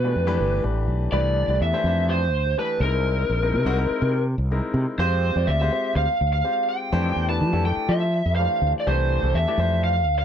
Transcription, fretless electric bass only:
0.00 0.14 B2 medium
0.16 0.37 F2 medium
0.40 0.62 G1 medium
0.64 0.86 A1 medium
0.88 1.10 B1 medium
1.12 1.45 C2 medium
1.48 1.59 C2 medium
1.61 1.72 E2 medium
1.84 2.32 F2 medium
2.32 2.54 D2 medium
2.80 3.23 C2 medium
3.29 3.55 A#1 medium
3.53 3.64 C3 medium
3.65 3.87 C2 medium
3.90 muted fretless electric bass stroke soft
4.02 4.34 C3 medium
4.38 4.60 C2 medium
4.74 4.85 C3 medium
4.98 5.31 F2 medium
5.36 5.46 F2 medium
5.48 5.69 D2 medium
5.95 6.06 D2 medium
6.21 6.42 D2 medium
6.93 7.14 F2 medium
7.16 7.42 E2 medium
7.41 7.51 F3 medium
7.53 7.74 F2 medium
7.77 muted fretless electric bass stroke soft
7.89 8.21 F3 medium
8.26 8.47 F2 medium
8.62 8.72 D2 medium
8.87 9.18 C2 medium
9.23 9.33 C2 medium
9.34 9.45 E2 medium
9.58 10.07 F2 medium
10.07 10.25 D2 medium

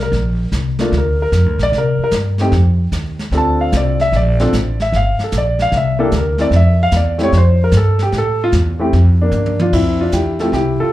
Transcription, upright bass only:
0.00 0.11 C2 medium
0.12 0.51 A#1 medium
0.52 0.91 C2 medium
0.92 1.31 D2 medium
1.32 1.46 F2 medium
1.46 1.58 D2 medium
1.58 1.71 A#1 medium
1.72 1.97 C3 medium
1.99 muted upright bass stroke soft
2.11 2.51 G2 medium
2.52 2.91 F2 medium
2.92 3.31 D#2 medium
3.31 3.71 D2 medium
3.73 4.12 C2 medium
4.12 4.51 A#1 medium
4.53 4.92 A1 medium
4.92 5.17 G1 medium
5.20 muted upright bass stroke soft
5.32 5.71 A#1 medium
5.72 6.11 C2 medium
6.12 6.50 D2 medium
6.51 6.91 F2 medium
6.92 7.31 E2 loud
7.32 7.71 F2 medium
7.72 8.11 G2 medium
8.12 8.52 A2 medium
8.53 8.92 E2 loud
8.93 9.31 F2 loud
9.31 9.71 G2 medium
9.73 10.12 F2 medium
10.13 10.52 E2 medium
10.52 10.77 C2 medium
10.80 muted upright bass stroke soft

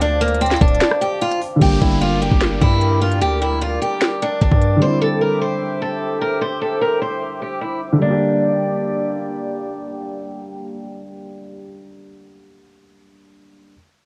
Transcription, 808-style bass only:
0.00 0.57 D2 loud
0.61 0.81 D1 loud
1.61 1.81 G1 loud
1.82 2.29 G1 loud
2.31 2.60 G1 loud
2.62 3.23 G2 loud
3.21 3.78 D2 loud
4.41 4.51 G1 loud
4.52 4.80 G2 loud

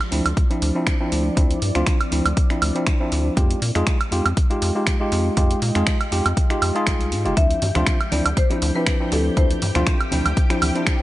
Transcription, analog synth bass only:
0.12 0.21 D2 medium
0.26 0.33 D2 medium
0.62 0.71 D2 loud
1.12 1.30 D2 loud
1.37 1.55 D2 medium
1.62 1.71 G2 medium
1.75 1.83 D2 medium
2.12 2.21 D2 medium
2.25 2.33 D2 loud
2.62 2.71 D2 loud
3.12 3.30 D2 medium
3.37 3.55 F2 medium
3.62 3.71 A#2 medium
3.75 3.83 F2 medium
4.12 4.21 F2 medium
4.25 4.33 F2 medium
4.62 4.71 F2 medium
5.12 5.30 F2 loud
5.37 5.55 F2 medium
5.62 5.71 A#2 medium
5.76 5.83 F2 medium
6.12 6.21 F2 medium
6.26 6.33 F2 medium
6.62 6.71 F2 loud
6.87 7.13 C2 medium
7.12 7.27 G#2 loud
7.26 7.33 F1 loud
7.37 7.55 D2 medium
7.62 7.71 G2 medium
7.76 7.83 D2 medium
8.12 8.21 D2 medium
8.26 8.33 D2 medium
8.62 8.71 D2 loud
9.12 9.30 D2 loud
9.37 9.55 D2 medium
9.62 9.71 G2 medium
9.76 9.83 D2 loud
10.12 10.21 D2 medium
10.26 10.33 D2 medium
10.62 10.71 D2 medium

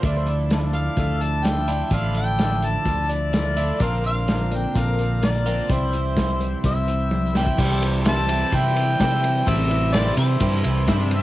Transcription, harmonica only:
0.74 1.24 F5 medium
1.22 1.46 A5 loud
1.45 1.92 G5 medium
1.93 2.15 F5 medium
2.17 2.67 G5 loud
2.66 3.13 A5 loud
3.11 3.81 D5 medium
3.83 4.04 F5 medium
4.06 4.57 F5 loud
4.55 4.80 G5 medium
4.79 5.27 F5 medium
5.25 5.74 D5 medium
5.72 6.49 C5 medium
6.66 7.32 E5 medium
7.36 7.80 G5 medium
8.08 8.56 A5 loud
8.55 9.50 G5 loud
9.48 9.96 E5 loud
9.95 10.17 D5 loud
10.18 10.62 C5 medium
11.15 11.22 F5 medium

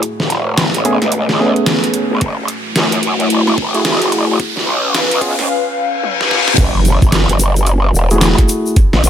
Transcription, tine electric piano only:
0.85 0.96 A3 medium
0.85 0.96 B3 medium
0.85 0.96 C#4 medium
0.85 0.96 G#4 medium
1.40 2.20 A3 medium
1.40 2.20 B3 medium
1.40 2.20 C#4 medium
1.40 2.20 G#4 medium
3.74 4.38 A3 medium
3.74 4.38 E4 medium
3.74 4.38 F#4 medium
3.74 4.38 G#4 medium
5.21 5.33 B3 medium
5.21 5.33 C#4 medium
5.21 5.33 F4 medium
5.21 5.33 G#4 medium
8.11 8.75 A3 medium
8.11 8.75 E4 medium
8.11 8.75 F#4 medium
8.11 8.75 G#4 medium

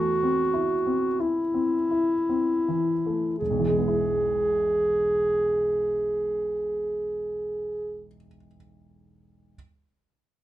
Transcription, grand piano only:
0.00 3.36 E2 soft
0.00 0.11 E3 soft
0.00 0.41 A3 soft
0.23 0.73 C4 soft
0.54 1.05 E4 soft
0.87 1.40 C4 soft
1.20 1.75 E4 soft
1.54 2.13 C4 soft
1.91 2.52 E4 soft
2.29 2.91 C4 soft
2.68 3.27 E3 soft
3.06 3.40 A3 soft
3.41 8.07 E1 soft
3.50 8.17 B1 soft
3.60 8.26 E3 soft
3.69 8.35 G#3 soft
3.79 8.45 B3 soft
3.88 8.54 E4 soft

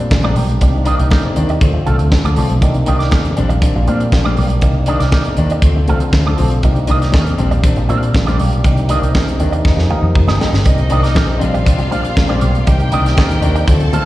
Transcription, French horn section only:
0.00 0.59 G3 medium
0.00 1.59 A#3 medium
0.00 1.59 D4 medium
0.62 1.61 C3 medium
0.62 1.61 D#4 medium
1.62 2.62 D3 medium
1.62 2.61 A3 medium
1.62 2.61 C4 medium
1.62 2.62 F4 medium
2.61 3.36 C3 medium
2.61 5.60 A#3 medium
2.61 5.60 D4 medium
2.61 3.36 D#4 medium
3.38 4.62 G3 medium
4.63 5.62 C3 medium
4.63 5.62 D#4 medium
5.64 6.63 D3 medium
5.64 6.63 A3 medium
5.64 6.63 C4 medium
5.64 6.63 F4 medium
6.64 7.38 C3 medium
6.64 9.63 A#3 medium
6.64 9.62 D4 medium
6.64 7.39 D#4 medium
7.39 8.63 G3 medium
8.65 9.65 C3 medium
8.65 10.48 D#4 medium
9.64 10.48 F3 medium
9.64 10.48 G4 medium
9.64 10.48 A#4 medium
10.65 11.40 C3 medium
10.65 11.38 A#3 medium
10.65 13.65 C4 medium
10.65 11.40 D#4 medium
11.39 12.65 G3 medium
11.39 13.65 A#3 medium
12.68 13.67 C3 medium
12.68 13.67 D#4 medium
13.68 14.05 D3 medium
13.68 14.05 A3 medium
13.68 14.05 C4 medium
13.68 14.05 F4 medium

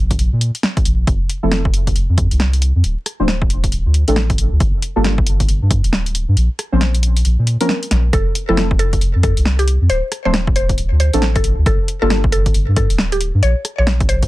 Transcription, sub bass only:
0.00 0.17 A#1 loud
0.19 0.31 A#1 medium
0.33 0.51 A#2 medium
0.85 1.05 A#1 medium
1.07 1.19 F1 medium
1.43 1.94 F1 loud
1.96 2.07 F1 medium
2.09 2.27 F2 medium
2.31 2.72 C2 loud
2.75 2.83 F2 medium
2.84 2.95 D1 medium
3.19 3.70 D1 loud
3.72 3.84 D1 medium
3.86 4.04 D2 medium
4.08 4.49 A1 loud
4.52 4.59 D2 loud
4.60 4.72 G1 loud
4.96 5.47 G1 loud
5.48 5.60 G1 medium
5.62 5.80 G2 medium
5.84 6.25 D1 loud
6.28 6.35 G2 loud
6.37 6.48 A#1 medium
6.72 7.23 A#1 loud
7.25 7.37 A#1 medium
7.39 7.57 A#2 medium
7.91 8.11 A#1 medium
8.13 8.25 F1 loud
8.49 9.00 F1 loud
9.01 9.13 F1 medium
9.15 9.33 F2 medium
9.37 9.78 C2 loud
9.81 9.88 F2 loud
9.90 10.01 D1 loud
10.25 10.76 D1 loud
10.78 10.90 D1 medium
10.91 11.10 D2 loud
11.13 11.55 A1 loud
11.58 11.65 D2 loud
11.66 11.78 G1 loud
12.02 12.52 G1 loud
12.54 12.66 G1 medium
12.68 12.86 G2 medium
12.90 13.31 D1 loud
13.34 13.41 G2 loud
13.43 13.54 A#1 loud
13.78 14.28 A#1 loud

